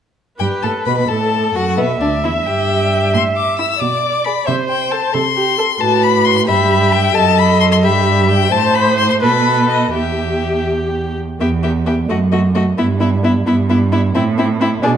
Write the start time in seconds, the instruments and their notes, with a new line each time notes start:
0.39 cello G2, violin G4 G5, viola B4
0.62 cello A2, violin A4 A5
0.85 cello B2, violin B4 B5
0.97 cello B2, violin B4 B5
1.08 cello A2, violin A4 A5, viola A4
1.55 cello F#2, violin F#4 F#5
1.77 cello B2, violin B3 B4, viola E5
2.00 cello D2, violin D4 D5
2.23 cello E2, violin E4 E5
2.46 cello G2, violin G4 G5
3.14 cello A2, violin C6
3.36 violin D6
3.58 violin E4 E6
3.70 violin E6
3.80 cello B2, viola D5, violin D6
4.24 violin G#4 B5
4.46 cello C3, viola C5, violin E5
4.69 violin G5
4.91 violin A4 A5
5.14 cello C3, viola A4, violin C6
5.36 viola G4
5.58 viola A4, violin A4
5.80 cello A2, viola F#4, violin B4 A5
6.03 violin B5
6.25 violin C6
6.37 violin C6
6.47 cello G2, viola G4, violin E5 B5
6.92 violin G5
7.15 cello F#2, viola A4, violin D#5 A5
7.38 violin B5
7.60 violin C6
7.72 violin C6
7.83 cello G2, viola G4, violin E5 B5
8.29 violin G5
8.51 cello A2, violin C5 A5, viola C5
8.75 violin B5
8.98 violin C6
9.10 violin C6
9.21 cello B2, violin A4 B5, viola B4
9.69 violin D#5
9.94 cello E2, viola G4, violin G4 E5
11.40 cello E2, viola B3, violin G4 E5
11.63 viola B3, violin G4 E5
11.85 viola B3, violin G4 E5
12.09 cello F#2, viola A3, violin F#4 D#5
12.31 viola A3, violin F#4 D#5
12.55 viola A3, violin F#4 D#5
12.77 cello G2, viola B3, violin E4 E5
13.00 viola B3, violin E4 E5
13.23 viola B3, violin E4 E5
13.46 cello G2, viola B3, violin E4 E5
13.69 viola B3, violin E4 E5
13.92 viola B3, violin E4 E5
14.15 cello A2, viola C4, violin E4 E5
14.37 viola C4, violin E4 E5
14.60 viola C4, violin E4 E5
14.83 cello B2, viola D4, violin G#4 D5